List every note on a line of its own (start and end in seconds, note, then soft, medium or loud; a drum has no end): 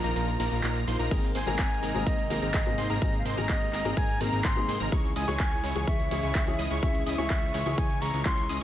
0.00 1.08 D#3 medium
0.00 1.08 F3 medium
0.00 4.88 A#3 medium
0.00 1.07 F4 medium
0.04 0.14 A#1 medium
0.04 0.14 F3 medium
0.04 0.14 A#3 medium
0.04 0.14 D#4 medium
0.04 0.14 F4 medium
0.04 0.14 A#4 medium
0.04 0.14 A#5 loud
0.04 closed hi-hat soft
0.04 shaker soft
0.16 0.37 A#1 medium
0.16 0.36 F3 medium
0.16 0.36 A#3 medium
0.16 0.36 D#4 medium
0.16 0.36 F4 medium
0.16 0.36 A#4 medium
0.16 0.36 A#5 medium
0.16 closed hi-hat medium
0.16 shaker soft
0.28 closed hi-hat soft
0.28 shaker soft
0.40 0.49 A#1 loud
0.40 0.49 F3 medium
0.40 0.49 A#3 medium
0.40 0.49 D#4 medium
0.40 0.49 F4 medium
0.40 0.49 A#4 loud
0.40 0.49 A#5 loud
0.40 open hi-hat loud
0.40 ride medium
0.40 shaker medium
0.52 0.61 A#1 loud
0.52 0.62 F3 medium
0.52 0.62 A#3 medium
0.52 0.62 D#4 medium
0.52 0.62 F4 medium
0.52 0.62 A#4 medium
0.52 0.62 A#5 medium
0.52 closed hi-hat soft
0.52 shaker soft
0.63 0.85 A#1 loud
0.63 0.84 F3 medium
0.63 0.84 A#3 medium
0.63 0.84 D#4 medium
0.63 0.84 F4 medium
0.63 0.84 A#4 medium
0.63 0.84 A#5 medium
0.63 clap loud
0.63 closed hi-hat medium
0.63 shaker soft
0.76 closed hi-hat soft
0.76 shaker soft
0.87 0.97 A#1 loud
0.87 0.96 F3 medium
0.87 0.96 A#3 medium
0.87 0.96 D#4 medium
0.87 0.96 F4 medium
0.87 0.96 C5 medium
0.87 0.97 C6 loud
0.87 open hi-hat medium
0.87 ride medium
0.87 shaker medium
0.99 1.09 A#1 loud
0.99 1.08 F3 medium
0.99 1.08 A#3 medium
0.99 1.08 D#4 medium
0.99 1.08 F4 medium
0.99 1.08 A#4 loud
0.99 1.08 A#5 loud
0.99 closed hi-hat soft
0.99 shaker soft
1.11 1.33 G#1 loud
1.11 1.30 G#2 medium
1.11 4.88 C3 medium
1.11 1.30 D#3 medium
1.11 8.63 G#3 medium
1.11 1.30 A#3 medium
1.11 1.30 C4 medium
1.11 1.30 D#4 medium
1.11 4.88 D#4 medium
1.11 1.30 G#4 medium
1.11 1.30 A#4 medium
1.11 1.30 A#5 medium
1.11 kick loud
1.11 closed hi-hat medium
1.11 crash medium
1.11 shaker soft
1.23 closed hi-hat soft
1.23 shaker soft
1.35 1.45 G#1 loud
1.35 1.44 A#3 medium
1.35 1.44 C4 medium
1.35 1.44 D#4 medium
1.35 1.44 G#4 medium
1.35 1.44 C5 medium
1.35 2.08 G#5 loud
1.35 1.44 C6 medium
1.35 open hi-hat loud
1.35 ride medium
1.35 shaker medium
1.46 1.57 G#1 loud
1.46 1.58 G#2 loud
1.46 1.59 D#3 loud
1.46 1.56 A#3 loud
1.46 1.59 A#3 medium
1.46 1.56 C4 medium
1.46 1.59 C4 medium
1.46 1.56 D#4 medium
1.46 1.56 G#4 medium
1.46 1.59 G#4 loud
1.46 1.56 A#4 loud
1.46 1.56 A#5 loud
1.46 closed hi-hat soft
1.46 shaker soft
1.59 1.80 G#1 loud
1.59 1.80 A#3 medium
1.59 1.80 C4 medium
1.59 1.80 D#4 medium
1.59 1.80 A#5 medium
1.59 kick loud
1.59 clap loud
1.59 closed hi-hat medium
1.59 shaker soft
1.71 closed hi-hat soft
1.71 shaker soft
1.82 1.92 G#1 loud
1.82 1.92 A#3 medium
1.82 1.92 C4 medium
1.82 1.92 D#4 medium
1.82 1.92 G#4 medium
1.82 1.92 A#4 medium
1.82 1.92 A#5 medium
1.82 open hi-hat loud
1.82 ride medium
1.82 shaker medium
1.94 2.04 G#1 medium
1.94 2.13 G#2 loud
1.94 2.13 D#3 medium
1.94 2.05 A#3 medium
1.94 2.13 A#3 medium
1.94 2.05 C4 medium
1.94 2.14 C4 medium
1.94 2.05 D#4 medium
1.94 2.05 G#4 medium
1.94 2.14 G#4 loud
1.94 2.05 A#4 medium
1.94 2.05 A#5 medium
1.94 closed hi-hat soft
1.94 shaker soft
2.06 2.28 G#1 loud
2.06 2.27 A#3 medium
2.06 2.27 C4 medium
2.06 2.27 D#4 medium
2.06 2.27 G#4 medium
2.06 2.27 A#4 medium
2.06 3.01 D#5 medium
2.06 2.27 A#5 medium
2.06 kick loud
2.06 closed hi-hat medium
2.06 shaker soft
2.19 closed hi-hat soft
2.19 shaker soft
2.30 2.40 G#1 loud
2.30 2.49 G#2 medium
2.30 2.49 D#3 medium
2.30 2.39 A#3 medium
2.30 2.49 A#3 medium
2.30 2.39 C4 medium
2.30 2.49 C4 medium
2.30 2.39 D#4 medium
2.30 2.39 G#4 medium
2.30 2.49 G#4 medium
2.30 2.39 A#4 loud
2.30 2.39 A#5 loud
2.30 open hi-hat loud
2.30 ride medium
2.30 shaker medium
2.42 2.52 G#1 loud
2.42 2.52 A#3 medium
2.42 2.52 C4 medium
2.42 2.52 D#4 medium
2.42 2.52 G#4 medium
2.42 2.52 A#4 medium
2.42 2.52 A#5 medium
2.42 closed hi-hat soft
2.42 shaker soft
2.54 2.76 G#1 medium
2.54 2.74 A#3 medium
2.54 2.74 C4 medium
2.54 2.74 D#4 medium
2.54 2.74 G#4 medium
2.54 2.74 A#4 medium
2.54 2.74 A#5 medium
2.54 kick loud
2.54 clap loud
2.54 closed hi-hat medium
2.54 shaker soft
2.65 2.78 G#2 medium
2.65 2.78 D#3 medium
2.65 2.78 A#3 medium
2.65 2.78 C4 medium
2.65 2.78 G#4 loud
2.65 closed hi-hat soft
2.65 shaker soft
2.78 2.87 G#1 loud
2.78 2.87 A#3 medium
2.78 2.87 C4 medium
2.78 2.87 D#4 medium
2.78 2.87 G#4 medium
2.78 2.87 C5 medium
2.78 2.87 C6 loud
2.78 open hi-hat loud
2.78 ride medium
2.78 shaker medium
2.90 2.99 G#1 loud
2.90 2.99 A#3 medium
2.90 2.99 C4 medium
2.90 2.99 D#4 medium
2.90 2.99 G#4 medium
2.90 2.99 A#4 loud
2.90 2.99 A#5 loud
2.90 closed hi-hat soft
2.90 shaker soft
3.01 3.23 G#1 loud
3.01 3.20 G#2 medium
3.01 3.20 D#3 medium
3.01 3.20 A#3 medium
3.01 3.21 A#3 medium
3.01 3.20 C4 medium
3.01 3.21 C4 medium
3.01 3.20 D#4 medium
3.01 3.21 G#4 medium
3.01 3.20 A#4 medium
3.01 3.18 D#5 loud
3.01 3.20 A#5 medium
3.01 kick loud
3.01 closed hi-hat medium
3.01 shaker soft
3.14 closed hi-hat soft
3.14 shaker soft
3.19 3.27 F5 medium
3.25 3.35 G#1 loud
3.25 3.35 A#3 medium
3.25 3.35 C4 medium
3.25 3.35 D#4 medium
3.25 3.35 G#4 medium
3.25 3.35 C5 medium
3.25 3.99 D#5 loud
3.25 3.35 C6 loud
3.25 open hi-hat loud
3.25 ride medium
3.25 shaker medium
3.37 3.47 G#1 loud
3.37 3.49 G#2 loud
3.37 3.49 D#3 loud
3.37 3.47 A#3 loud
3.37 3.49 A#3 medium
3.37 3.47 C4 medium
3.37 3.49 C4 medium
3.37 3.47 D#4 medium
3.37 3.47 G#4 medium
3.37 3.50 G#4 loud
3.37 3.47 A#4 loud
3.37 3.46 A#5 loud
3.37 closed hi-hat soft
3.37 shaker soft
3.49 3.71 G#1 medium
3.49 3.70 A#3 medium
3.49 3.70 C4 medium
3.49 3.70 G#4 medium
3.49 3.70 A#4 medium
3.49 kick loud
3.49 clap loud
3.49 closed hi-hat medium
3.49 shaker soft
3.61 closed hi-hat soft
3.61 shaker soft
3.73 3.83 G#1 loud
3.73 3.82 A#3 medium
3.73 3.82 C4 medium
3.73 3.82 D#4 medium
3.73 3.82 G#4 medium
3.73 3.82 A#4 medium
3.73 3.82 A#5 medium
3.73 clap soft
3.73 open hi-hat loud
3.73 ride medium
3.73 shaker medium
3.84 3.95 G#1 loud
3.84 4.04 G#2 medium
3.84 4.04 D#3 medium
3.84 4.04 A#3 medium
3.84 3.95 A#3 medium
3.84 3.95 C4 medium
3.84 4.04 C4 medium
3.84 3.95 D#4 medium
3.84 3.95 G#4 medium
3.84 4.04 G#4 loud
3.84 3.95 A#4 medium
3.84 3.95 A#5 medium
3.84 closed hi-hat soft
3.84 shaker soft
3.97 4.18 G#1 loud
3.97 4.17 C4 medium
3.97 4.17 D#4 medium
3.97 4.17 G#4 medium
3.97 4.17 A#4 medium
3.97 4.22 G#5 loud
3.97 4.17 A#5 medium
3.97 kick loud
3.97 closed hi-hat medium
3.97 shaker soft
4.09 closed hi-hat soft
4.09 shaker soft
4.20 4.30 G#1 loud
4.20 4.39 G#2 medium
4.20 4.40 D#3 medium
4.20 4.30 A#3 medium
4.20 4.40 A#3 medium
4.20 4.30 C4 medium
4.20 4.40 C4 medium
4.20 4.30 D#4 medium
4.20 4.30 G#4 medium
4.20 4.40 G#4 medium
4.20 4.30 A#4 loud
4.20 4.30 A#5 loud
4.20 4.46 A#5 loud
4.20 open hi-hat loud
4.20 ride medium
4.20 shaker medium
4.33 4.42 G#1 loud
4.33 4.43 A#3 medium
4.33 4.43 C4 medium
4.33 4.43 D#4 medium
4.33 4.43 G#4 medium
4.33 4.43 A#4 medium
4.33 4.43 A#5 medium
4.33 closed hi-hat soft
4.33 shaker soft
4.44 4.66 G#1 medium
4.44 4.65 A#3 medium
4.44 4.65 D#4 medium
4.44 4.65 G#4 medium
4.44 4.65 A#4 medium
4.44 4.65 A#5 medium
4.44 4.80 C6 loud
4.44 kick loud
4.44 clap loud
4.44 closed hi-hat medium
4.44 shaker soft
4.56 4.68 G#2 loud
4.56 4.68 D#3 medium
4.56 4.68 A#3 medium
4.56 4.68 C4 medium
4.56 4.69 G#4 loud
4.56 closed hi-hat soft
4.56 shaker soft
4.68 4.78 G#2 medium
4.68 4.78 A#3 medium
4.68 4.78 C4 medium
4.68 4.78 D#4 medium
4.68 4.78 G#4 medium
4.68 4.78 C5 medium
4.68 4.77 C6 loud
4.68 open hi-hat loud
4.68 ride medium
4.68 shaker medium
4.80 4.90 G#1 loud
4.80 4.89 A#3 loud
4.80 4.89 C4 medium
4.80 4.89 D#4 medium
4.80 4.89 G#4 medium
4.80 4.89 A#4 loud
4.80 4.89 A#5 loud
4.80 closed hi-hat soft
4.80 shaker soft
4.92 5.14 C#2 loud
4.92 8.63 C#3 medium
4.92 5.11 E3 medium
4.92 8.63 E3 medium
4.92 5.11 G#3 medium
4.92 5.11 C#4 medium
4.92 5.11 E4 medium
4.92 8.63 E4 medium
4.92 5.11 G#4 medium
4.92 5.11 C#5 medium
4.92 5.11 C#6 medium
4.92 kick loud
4.92 closed hi-hat medium
4.92 shaker soft
5.04 closed hi-hat soft
5.04 shaker soft
5.16 5.26 C#2 loud
5.16 5.25 G#3 medium
5.16 5.25 C#4 medium
5.16 5.25 E4 medium
5.16 5.25 G#4 medium
5.16 5.25 D#5 medium
5.16 5.89 G#5 loud
5.16 5.25 D#6 medium
5.16 open hi-hat loud
5.16 ride medium
5.16 shaker medium
5.27 5.38 C#2 loud
5.27 5.39 E3 loud
5.27 5.40 G#3 medium
5.27 5.37 G#3 loud
5.27 5.37 C#4 medium
5.27 5.40 C#4 medium
5.27 5.37 E4 medium
5.27 5.37 G#4 medium
5.27 5.40 G#4 loud
5.27 5.37 C#5 loud
5.27 5.37 C#6 loud
5.27 closed hi-hat soft
5.27 shaker soft
5.40 5.61 C#2 loud
5.40 5.61 G#3 medium
5.40 5.61 C#4 medium
5.40 5.61 E4 medium
5.40 5.61 G#4 medium
5.40 kick loud
5.40 clap loud
5.40 closed hi-hat medium
5.40 shaker soft
5.52 closed hi-hat soft
5.52 shaker soft
5.64 5.73 C#2 loud
5.64 5.73 G#3 medium
5.64 5.73 C#4 medium
5.64 5.73 E4 medium
5.64 5.73 G#4 medium
5.64 5.73 C#5 medium
5.64 5.73 C#6 medium
5.64 open hi-hat loud
5.64 ride medium
5.64 shaker medium
5.75 5.85 C#2 loud
5.75 5.94 E3 medium
5.75 5.94 G#3 medium
5.75 5.86 G#3 medium
5.75 5.86 C#4 medium
5.75 5.95 C#4 medium
5.75 5.86 E4 medium
5.75 5.86 G#4 medium
5.75 5.95 G#4 loud
5.75 5.86 C#5 medium
5.75 5.86 C#6 loud
5.75 closed hi-hat soft
5.75 shaker soft
5.87 6.09 C#2 medium
5.87 6.08 G#3 medium
5.87 6.08 C#4 medium
5.87 6.08 C#5 medium
5.87 6.82 E5 medium
5.87 6.08 C#6 medium
5.87 kick loud
5.87 closed hi-hat medium
5.87 shaker soft
5.99 closed hi-hat soft
5.99 shaker soft
6.11 6.21 C#2 loud
6.11 6.30 E3 medium
6.11 6.30 G#3 medium
6.11 6.20 G#3 medium
6.11 6.20 C#4 medium
6.11 6.30 C#4 medium
6.11 6.20 E4 medium
6.11 6.20 G#4 medium
6.11 6.30 G#4 medium
6.11 6.20 C#5 loud
6.11 6.20 C#6 loud
6.11 open hi-hat loud
6.11 ride medium
6.11 shaker medium
6.23 6.33 C#2 loud
6.23 6.33 G#3 medium
6.23 6.33 C#4 medium
6.23 6.33 E4 medium
6.23 6.33 G#4 medium
6.23 6.33 C#5 medium
6.23 6.33 C#6 medium
6.23 closed hi-hat soft
6.23 shaker soft
6.35 6.57 C#2 loud
6.35 6.55 G#3 medium
6.35 6.55 C#4 medium
6.35 6.55 C#5 medium
6.35 6.55 C#6 medium
6.35 kick loud
6.35 clap loud
6.35 closed hi-hat medium
6.35 shaker soft
6.46 6.58 E3 medium
6.46 6.59 G#3 medium
6.46 6.59 C#4 medium
6.46 6.59 G#4 loud
6.46 closed hi-hat soft
6.46 shaker soft
6.59 6.68 C#2 medium
6.59 6.68 G#3 medium
6.59 6.68 C#4 medium
6.59 6.68 E4 medium
6.59 6.68 G#4 medium
6.59 6.68 D#5 loud
6.59 6.68 D#6 loud
6.59 open hi-hat loud
6.59 ride medium
6.59 shaker medium
6.71 6.80 C#2 loud
6.71 6.80 G#3 medium
6.71 6.80 C#4 medium
6.71 6.80 E4 medium
6.71 6.80 G#4 medium
6.71 6.80 C#5 loud
6.71 6.80 C#6 loud
6.71 closed hi-hat soft
6.71 shaker soft
6.82 7.04 C#2 loud
6.82 7.01 E3 medium
6.82 7.01 G#3 medium
6.82 7.01 C#4 medium
6.82 7.02 C#4 medium
6.82 7.01 E4 medium
6.82 7.01 G#4 medium
6.82 7.02 G#4 medium
6.82 7.01 C#5 medium
6.82 7.05 E5 loud
6.82 7.01 C#6 medium
6.82 kick loud
6.82 closed hi-hat medium
6.82 shaker soft
6.95 closed hi-hat soft
6.95 shaker soft
7.06 7.16 C#2 loud
7.06 7.16 G#3 medium
7.06 7.16 C#4 medium
7.06 7.16 E4 medium
7.06 7.16 G#4 medium
7.06 7.16 D#5 medium
7.06 7.79 E5 loud
7.06 7.15 D#6 medium
7.06 open hi-hat loud
7.06 ride medium
7.06 shaker medium
7.18 7.28 C#2 loud
7.18 7.30 E3 loud
7.18 7.30 G#3 loud
7.18 7.27 G#3 medium
7.18 7.27 C#4 medium
7.18 7.30 C#4 medium
7.18 7.27 E4 medium
7.18 7.27 G#4 medium
7.18 7.30 G#4 loud
7.18 7.27 C#5 loud
7.18 7.27 C#6 loud
7.18 closed hi-hat soft
7.18 shaker soft
7.30 7.52 C#2 medium
7.30 kick loud
7.30 clap loud
7.30 closed hi-hat medium
7.30 shaker soft
7.42 closed hi-hat soft
7.42 shaker soft
7.54 7.64 C#2 loud
7.54 7.63 G#3 medium
7.54 7.63 C#4 medium
7.54 7.63 E4 medium
7.54 7.63 G#4 medium
7.54 7.63 C#5 medium
7.54 7.63 C#6 medium
7.54 clap soft
7.54 open hi-hat loud
7.54 ride medium
7.54 shaker medium
7.65 7.76 C#2 loud
7.65 7.85 E3 medium
7.65 7.85 G#3 medium
7.65 7.76 G#3 medium
7.65 7.76 C#4 medium
7.65 7.85 C#4 medium
7.65 7.76 E4 medium
7.65 7.76 G#4 medium
7.65 7.85 G#4 loud
7.65 7.76 C#5 medium
7.65 7.76 C#6 medium
7.65 closed hi-hat soft
7.65 shaker soft
7.78 7.99 C#2 medium
7.78 7.98 G#3 medium
7.78 7.98 C#4 medium
7.78 7.98 E4 medium
7.78 7.98 G#4 medium
7.78 7.98 C#5 medium
7.78 8.03 G#5 loud
7.78 7.98 C#6 medium
7.78 kick loud
7.78 closed hi-hat medium
7.78 shaker soft
7.90 closed hi-hat soft
7.90 shaker soft
8.01 8.11 C#2 loud
8.01 8.11 G#3 medium
8.01 8.11 C#4 medium
8.01 8.11 E4 medium
8.01 8.11 G#4 medium
8.01 8.11 C#5 loud
8.01 8.25 A#5 loud
8.01 8.11 C#6 loud
8.01 open hi-hat loud
8.01 ride medium
8.01 shaker medium
8.13 8.23 C#2 loud
8.13 8.24 G#3 medium
8.13 8.24 C#4 medium
8.13 8.24 E4 medium
8.13 8.24 G#4 medium
8.13 8.24 C#5 medium
8.13 8.24 C#6 medium
8.13 closed hi-hat soft
8.13 shaker soft
8.25 8.47 C#2 loud
8.25 8.44 E3 medium
8.25 8.44 G#3 medium
8.25 8.44 C#4 medium
8.25 8.46 E4 medium
8.25 8.45 G#4 medium
8.25 8.59 C6 loud
8.25 8.46 C#6 medium
8.25 kick loud
8.25 clap loud
8.25 closed hi-hat medium
8.25 shaker soft
8.37 closed hi-hat soft
8.37 shaker soft
8.49 8.59 C#2 medium
8.49 8.58 G#3 medium
8.49 8.58 C#4 medium
8.49 8.58 E4 medium
8.49 8.58 G#4 medium
8.49 8.58 D#5 medium
8.49 8.58 D#6 loud
8.49 open hi-hat loud
8.49 ride medium
8.49 shaker medium